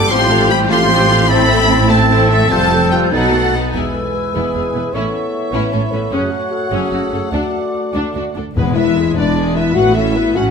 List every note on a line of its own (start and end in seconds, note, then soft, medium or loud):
0.00 0.11 A3 medium
0.00 0.11 B3 medium
0.00 0.12 G4 medium
0.00 0.10 A4 medium
0.00 0.11 D5 medium
0.00 0.11 D6 loud
0.10 2.46 A1 medium
0.10 2.46 A2 medium
0.10 0.52 F3 medium
0.10 0.29 G3 medium
0.10 0.52 C4 medium
0.10 0.49 F4 medium
0.10 0.29 F4 medium
0.10 0.69 G4 medium
0.10 0.29 G4 medium
0.10 0.29 C5 medium
0.10 0.50 C6 loud
0.10 0.70 G6 medium
0.30 0.50 A3 medium
0.30 0.50 F4 medium
0.30 0.50 A4 medium
0.30 0.50 F5 medium
0.49 0.70 G3 medium
0.49 0.70 F4 medium
0.49 0.70 G4 medium
0.49 0.70 C5 medium
0.49 0.58 B5 loud
0.68 1.28 F3 medium
0.68 0.90 A3 medium
0.68 1.28 C4 medium
0.68 1.30 F4 medium
0.68 0.90 F4 medium
0.68 1.29 G4 medium
0.68 0.89 A4 medium
0.68 0.89 F5 medium
0.68 1.29 C6 loud
0.68 1.29 G6 medium
0.89 1.08 G3 medium
0.89 1.08 F4 medium
0.89 1.08 G4 medium
0.89 1.08 C5 medium
1.09 1.30 A3 medium
1.09 1.30 F4 medium
1.09 1.29 A4 medium
1.09 1.29 F5 medium
1.28 1.88 A3 medium
1.28 1.88 C4 medium
1.28 1.47 C4 medium
1.28 1.88 C4 medium
1.28 1.48 E4 medium
1.28 1.72 A4 medium
1.28 1.48 C5 medium
1.28 1.89 B5 loud
1.28 1.88 A6 medium
1.49 1.70 A3 medium
1.49 1.68 C4 medium
1.49 1.70 A4 medium
1.49 1.70 E5 medium
1.68 1.88 C4 medium
1.68 1.90 E4 medium
1.68 1.89 C5 medium
1.88 2.49 A3 medium
1.88 2.10 A3 medium
1.88 2.49 C4 medium
1.88 2.08 C4 medium
1.88 2.09 A4 medium
1.88 2.49 A4 medium
1.88 2.09 E5 medium
1.88 2.30 A5 loud
1.88 2.49 A6 medium
2.08 2.28 C4 medium
2.08 2.28 E4 medium
2.08 2.28 C5 medium
2.29 2.50 A3 medium
2.29 2.50 C4 medium
2.29 2.49 A4 medium
2.29 2.50 E5 medium
2.29 2.50 E5 loud
2.49 3.11 F1 medium
2.49 3.11 F2 medium
2.49 3.12 G3 medium
2.49 2.69 G3 medium
2.49 3.11 C4 medium
2.49 3.13 C4 medium
2.49 2.69 F4 medium
2.49 2.69 A4 medium
2.49 3.11 A4 medium
2.49 2.69 C5 medium
2.49 2.91 A5 loud
2.49 3.12 G6 medium
2.71 2.91 A3 medium
2.71 2.92 G4 medium
2.71 2.92 A4 medium
2.71 2.90 A4 medium
2.90 3.12 G3 medium
2.90 3.12 F4 medium
2.90 3.11 A4 medium
2.90 3.12 C5 medium
2.90 2.99 G5 medium
3.11 3.53 B1 medium
3.11 3.53 B2 medium
3.11 3.53 F#3 medium
3.11 3.31 B3 medium
3.11 3.54 D#4 medium
3.11 3.32 D#4 medium
3.11 3.31 A4 medium
3.11 3.53 A4 medium
3.11 3.31 B4 medium
3.11 3.73 F#5 medium
3.11 3.54 A6 medium
3.32 3.53 A3 medium
3.32 3.52 B3 medium
3.32 3.54 F#4 medium
3.32 3.53 A4 medium
3.53 3.73 B3 medium
3.53 3.74 D#4 medium
3.53 3.75 A4 medium
3.53 3.75 B4 medium
3.73 3.83 E1 soft
3.73 4.31 E2 soft
3.73 3.83 E2 soft
3.73 4.90 G#3 soft
3.73 3.93 B3 soft
3.73 6.08 E4 soft
3.73 3.94 E4 soft
3.73 3.95 G#4 soft
3.73 4.90 B4 soft
3.73 4.90 G#5 soft
3.73 4.91 E6 soft
3.94 4.16 A4 soft
4.15 4.36 B4 soft
4.34 4.43 E1 soft
4.34 4.43 E2 soft
4.34 4.53 B3 soft
4.34 4.54 E4 soft
4.34 4.93 G#4 soft
4.54 4.63 E1 soft
4.54 4.64 E2 soft
4.54 4.62 B3 soft
4.54 4.64 G#4 soft
4.74 4.82 E1 soft
4.74 4.83 E2 soft
4.74 4.83 B3 soft
4.74 4.83 B4 soft
4.93 5.02 A1 medium
4.93 5.03 A2 medium
4.93 6.10 B3 soft
4.93 5.13 C#4 soft
4.93 5.13 E4 soft
4.93 5.54 A4 soft
4.93 7.32 C#5 soft
4.93 6.10 E5 soft
4.93 5.52 C#6 soft
5.52 5.61 A1 medium
5.52 5.61 A2 medium
5.52 5.71 C#4 medium
5.52 5.72 E4 medium
5.52 5.74 B4 soft
5.52 6.13 B5 soft
5.72 5.81 A1 soft
5.72 5.81 A2 soft
5.72 5.80 C#4 soft
5.72 5.80 A4 soft
5.72 5.93 C#5 soft
5.91 6.00 A1 soft
5.91 6.00 A2 soft
5.91 6.00 C#4 soft
5.91 6.14 A4 medium
5.91 6.00 B4 soft
6.11 6.20 F#1 medium
6.11 6.20 F#2 medium
6.11 8.31 A3 soft
6.11 6.30 C#4 medium
6.11 6.30 C#4 soft
6.11 8.35 F#4 soft
6.11 6.33 G#4 soft
6.11 8.36 F#5 medium
6.11 6.72 F#6 soft
6.32 6.53 F#4 soft
6.52 6.70 A4 soft
6.70 6.80 F#1 medium
6.70 6.80 F#2 medium
6.70 6.91 C#4 medium
6.70 6.91 C#4 soft
6.70 7.31 G#4 soft
6.70 7.33 E6 soft
6.91 7.00 F#1 soft
6.91 6.99 F#2 soft
6.91 7.00 C#4 soft
6.91 7.00 F#4 soft
7.12 7.20 F#1 soft
7.12 7.20 F#2 soft
7.12 7.21 C#4 soft
7.12 7.21 A4 soft
7.31 7.40 D2 soft
7.31 7.52 D4 soft
7.31 8.33 F#4 soft
7.31 8.33 D5 soft
7.31 8.34 D6 soft
7.94 8.02 D2 soft
7.94 8.13 D4 soft
7.94 8.14 D4 soft
8.15 8.23 D2 soft
8.15 8.23 D4 soft
8.15 8.23 F#4 soft
8.35 8.43 D2 soft
8.35 8.44 D2 soft
8.35 8.44 D4 soft
8.35 8.45 A4 soft
8.55 9.09 E1 medium
8.55 9.09 E2 medium
8.55 9.13 E2 medium
8.55 9.71 G#3 medium
8.55 8.76 G#3 soft
8.55 8.75 B3 medium
8.55 8.76 G#4 soft
8.55 8.75 B4 medium
8.55 8.63 B4 medium
8.55 8.65 B4 medium
8.74 8.97 B3 soft
8.74 9.15 E4 medium
8.74 8.97 B4 soft
8.74 9.16 E5 medium
8.98 9.17 G#3 soft
8.98 9.17 G#4 soft
9.15 9.69 E1 medium
9.15 9.69 E2 medium
9.15 9.37 B3 soft
9.15 9.55 D4 medium
9.15 9.37 B4 soft
9.15 9.55 D5 medium
9.15 9.56 D5 medium
9.38 9.56 G#3 soft
9.38 9.55 G#4 soft
9.55 9.76 B3 soft
9.55 9.75 E4 medium
9.55 9.76 B4 soft
9.55 9.76 E5 medium
9.55 9.77 E5 medium
9.74 10.29 A1 medium
9.74 10.29 A2 medium
9.74 10.35 A3 medium
9.74 9.96 B3 soft
9.74 9.95 F#4 medium
9.74 9.96 B4 soft
9.74 9.95 F#5 medium
9.74 9.97 F#5 medium
9.95 10.17 C#4 soft
9.95 10.35 E4 medium
9.95 10.17 A4 soft
9.95 10.36 E5 medium
10.17 10.37 B3 soft
10.17 10.37 B4 soft
10.35 10.51 A1 medium
10.35 10.51 A2 medium
10.35 10.51 C#4 medium
10.35 10.51 C#4 soft
10.35 10.51 F#4 medium
10.35 10.51 A4 soft
10.35 10.51 F#5 medium
10.35 10.44 F#5 medium
10.35 10.51 F#5 medium